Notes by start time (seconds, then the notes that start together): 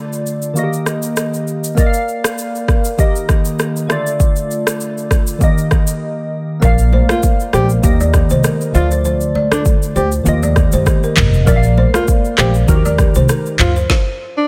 Already playing: D3 A3 F4 D5
0.13 shaker
0.26 shaker
0.42 shaker
0.54 D#3 A#3 F#4, shaker
0.59 D#5
0.64 G4
0.73 shaker
0.86 cross-stick, shaker
1.02 shaker
1.17 cross-stick, shaker
1.34 shaker
1.48 shaker
1.64 shaker
1.75 A#3 A#4 D5, kick, shaker
1.80 D#5
1.86 F5
1.94 shaker
2.08 shaker
2.24 cross-stick, shaker
2.38 shaker
2.55 shaker
2.68 kick, cross-stick, shaker
2.85 shaker
2.97 D#3 A#3 G4 D#5, kick, shaker
3.16 shaker
3.29 kick, cross-stick, shaker
3.45 shaker
3.59 cross-stick, shaker
3.76 shaker
3.87 D3 A3 F4, cross-stick, shaker
3.92 D5
4.07 shaker
4.20 kick, shaker
4.36 shaker
4.51 shaker
4.67 cross-stick, shaker
4.80 shaker
4.98 shaker
5.11 kick, cross-stick, shaker
5.27 shaker
5.39 D#3 A#3 G4, kick, shaker
5.44 D#5
5.58 shaker
5.71 kick, cross-stick, shaker
5.87 shaker
6.60 A#1 A#3 A#4 D5, kick, low conga, shaker
6.65 F5
6.78 shaker
6.93 C5, high conga
7.09 F4 A#4, cross-stick, high conga, shaker
7.23 kick, shaker
7.40 shaker
7.53 A#1 G4 C5, cross-stick, high conga, shaker
7.69 shaker
7.82 D#2 D#3 A#3 G4 D#5, kick, low conga, shaker
8.00 D5, high conga, shaker
8.14 kick, cross-stick, shaker
8.30 C2 C5, high conga, shaker
8.44 A#4, cross-stick, shaker
8.61 shaker
8.72 D2 D3 A3 F4 C5, low conga, shaker
8.77 D5
8.91 C5, shaker
9.05 C5, low conga, shaker
9.21 shaker
9.35 D5, high conga
9.52 D4 A4, cross-stick, high conga, shaker
9.65 kick, shaker
9.82 shaker
9.96 D2 G4 C5, high conga, shaker
10.12 shaker
10.23 D#2 D#3 A#3 F4, low conga, shaker
10.28 D#5
10.33 G4
10.43 D5, high conga, shaker
10.56 kick, cross-stick, shaker
10.72 G2 C5, high conga, shaker
10.86 kick, cross-stick, shaker
11.03 A#4, shaker
11.16 F1 A#4, kick, clap, mid tom, low conga, shaker
11.34 shaker
11.45 A#1 A#3 A#4 D5, kick, low conga, shaker
11.50 E5
11.56 F5
11.63 shaker
11.78 C5, high conga
11.94 F4 A#4, cross-stick, high conga, shaker
12.08 kick, shaker
12.25 shaker
12.38 A#1 G4 C5, cross-stick, clap, high conga, shaker
12.54 shaker
12.67 D#2 D#3 D#4 F#4 A#4, kick, low conga, shaker
12.75 G4
12.85 D5, high conga, shaker
12.98 kick, cross-stick, shaker
13.15 C2 C5, high conga, shaker
13.29 A#4, cross-stick, shaker
13.46 shaker
13.59 D2 F4 C5, clap, mid tom, low conga, shaker
13.76 C5, shaker
13.90 kick, snare
14.37 D4